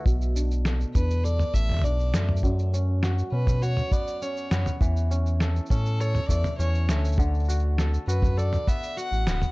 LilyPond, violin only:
\new Staff \with { instrumentName = "Violin" } { \time 4/4 \key b \minor \tempo 4 = 101 r4. b'8 d''8 e''8 d''8. r16 | r4. b'8 cis''8 d''8 cis''8. r16 | r4. a'8 cis''8 d''8 cis''8. r16 | r4. b'8 d''8 e''8 fis''8. r16 | }